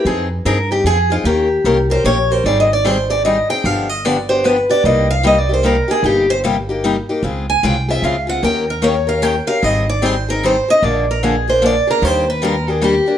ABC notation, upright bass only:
X:1
M:3/4
L:1/8
Q:"Swing" 1/4=150
K:Cm
V:1 name="Upright bass" clef=bass
F,,2 G,,2 F,,2 | E,,2 C,,2 B,,,2 | A,,,6 | G,,,6 |
C,,6 | G,,,6 | _D,,2 C,,2 D,,2 | E,,6 |
A,,,6 | B,,,6 | E,,6 |]